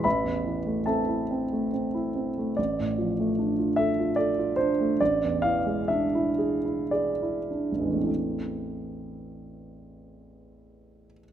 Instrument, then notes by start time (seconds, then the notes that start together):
grand piano
0.04 A1 B4 E5 B5
0.24 E2
0.45 E3
0.66 A3
0.86 C4 A4 E5 A5
1.08 E4
1.31 C4
1.53 A3
1.73 C4
1.94 E4
2.15 C4
2.38 A3
2.57 A1 D5
2.79 A2
2.98 F3
3.20 A3
3.38 D4
3.59 F4
3.76 A4 E5
4.00 F4
4.16 A4 D5
4.39 F4
4.56 D4 C5
4.81 A3
5.00 A1 D5
5.24 E2
5.42 E3 F5
5.66 G#3
5.88 D4 E5
6.15 E4
6.38 G#4
6.65 E4
6.91 G#4 D5
7.22 E4
7.51 D4
7.72 A1
7.79 E2 G#3
7.84 E3
7.89 A3
7.96 C4
8.02 E4
8.06 A4